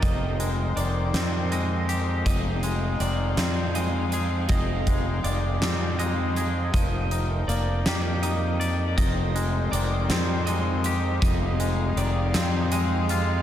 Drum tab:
HH |xxxxxx|xxxxxx|xxxxxx|xxxxxx|
SD |---o--|---o--|---o--|---o--|
BD |o-----|o-----|oo----|o-----|

HH |xxxxxx|xxxxxx|
SD |---o--|---o--|
BD |o-----|o-----|